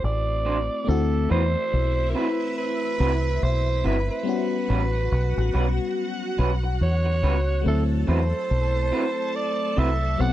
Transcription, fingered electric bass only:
0.04 A1
0.88 D2
1.31 E2
1.74 B1
3.00 C2
3.43 B1
3.85 G1
4.70 A1
5.12 B1
5.37 A1
5.54 B1
6.39 B1
6.81 E2
7.23 C#2
7.66 D2
8.08 E2
8.51 B1
9.78 C2
10.20 B1

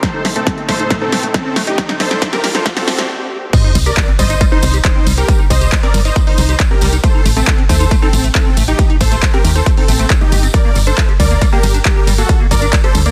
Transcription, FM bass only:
3.75 C2
4.19 G1
4.63 C2
5.07 C2
5.50 C2
5.94 G1
6.38 C2
6.82 C2
7.26 A1
7.69 D#2
8.13 A1
8.57 A1
9.01 A1
9.44 D#2
9.88 A1
10.32 G1
10.76 G1
11.20 D2
11.63 G1
12.07 G1
12.51 G1
12.95 D2

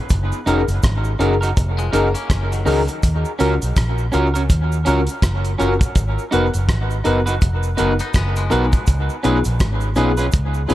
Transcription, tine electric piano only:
0.47 C#4 D#4 G#4 A#4
1.20 C#4 D#4 G#4 A#4
1.41 G#4 A#4
1.93 C#4 D#4 G#4 A#4
2.66 C#4 D#4 G#4 A#4
3.39 C#4 F4 F#4 A#4
4.13 C#4 F4 F#4 A#4
4.35 F#4 A#4
4.87 C#4 F4 F#4 A#4
5.59 C#4 F4 F#4 A#4
6.32 B3 D#4 F#4 A#4
7.05 B3 D#4 F#4 A#4
7.28 F#4 A#4
7.78 B3 D#4 F#4 A#4
8.50 B3 D#4 F#4 A#4
9.23 B3 D#4 F4 G#4
9.96 B3 D#4 F4 G#4
10.18 F4 G#4
10.68 B3 D#4 F4 G#4

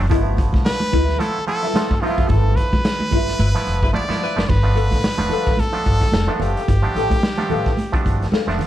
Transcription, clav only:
0.09 F3 A3 B3 E4
1.19 F3 A3 B3 E4
1.47 F3 A3 B3 E4
1.75 F3 A3 B3 F4
2.02 F3 A3 B3 D#4
2.10 E4
3.55 F3 A3 B3 E4
3.93 F3 A3 B3 E4
4.08 F3 A3 B3 E4
4.36 F3 A3 B3 E4
4.63 F3 A3 B3 D4
5.18 F3 A3 B3 D4
5.73 F3 A3 B3 D4
6.28 F3 A3 B3 D4
6.82 F3 A3 B3 D4
7.38 F3 A3 B3 D4
7.92 F3 A3 B3 D4
8.47 F3 A3 B3 D4

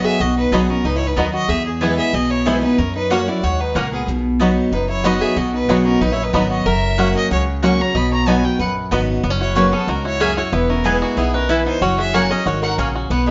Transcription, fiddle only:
0.05 E5
0.21 D#5
0.38 B4
0.53 G#4
0.70 A#4
0.86 B4
0.96 C#5
1.07 B4
1.17 A#4
1.34 D#5
1.49 E5
1.66 G#4
1.81 B4
1.98 E5
2.14 D#5
2.30 C#5
2.46 C5
2.63 B4
2.78 A#4
2.95 B4
3.11 C#5
3.28 D5
3.44 C#5
3.61 B4
3.76 A#4
3.92 G#4
4.72 B4
4.89 C#5
5.05 D#5
5.21 E5
5.37 D#5
5.54 B4
5.69 G#4
5.85 A#4
6.01 B4
6.12 C#5
6.23 B4
6.34 A#4
6.50 D#5
6.67 E5
7.16 D#5
7.32 C#5
7.63 C#6
7.81 A#5
7.96 B5
8.12 A#5
8.28 G#5
8.45 G5
8.60 F#5
9.41 C#5
9.57 B4
9.73 A4
9.89 A#4
10.06 C#5
10.21 E5
10.37 C#5
10.53 B4
10.70 A#4
10.85 G#4
11.02 F#4
11.17 G#4
11.34 A#4
11.50 B4
11.66 C5
11.82 C#5
11.99 E5
12.14 F#5
12.31 D#5
12.47 C#5
12.63 F#5
13.11 F#5

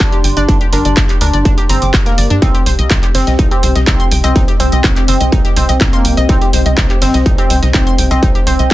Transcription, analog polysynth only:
0.00 D4
0.37 D4
0.73 D4
1.21 D4
1.69 C4
2.06 A#3
2.42 C4
3.15 C4
3.51 C4
3.87 C4
4.24 C4
4.60 C4
5.08 C4
5.57 C4
5.93 A#3
6.29 C4
7.02 C4
7.38 C4
7.74 C4
8.11 C4
8.47 C4

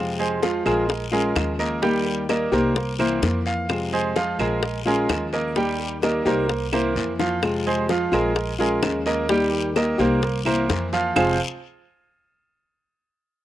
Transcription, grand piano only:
Already playing: F5
0.19 G#3 G#4 C5
0.42 F3 F4 F5
0.65 G#3 G#4 A#4
1.12 G#3 G#4 A#4
1.59 A#3 A#4 D#5
1.82 G3 G4 G5
2.29 A#3 A#4 D#5
2.53 A#3 A#4 C5
2.99 A#3 A#4 C5
3.47 F5
3.93 G#3 G#4 C5
4.16 F3 F4 F5
4.40 G#3 G#4 A#4
4.86 G#3 G#4 A#4
5.33 A#3 A#4 D#5
5.56 G3 G4 G5
6.03 A#3 A#4 D#5
6.27 A#3 A#4 C5
6.73 A#3 A#4 C5
7.19 F3 F4 F5
7.66 G#3 G#4 C5
7.90 F3 F4 F5
8.13 G#3 G#4 A#4
8.60 G#3 G#4 A#4
9.06 A#3 A#4 D#5
9.29 G3 G4 G5
9.76 A#3 A#4 D#5
9.99 A#3 A#4 C5
10.46 A#3 A#4 C5
10.93 F3 F4 F5
11.16 F3 C4 F4 G#4 C5 F5

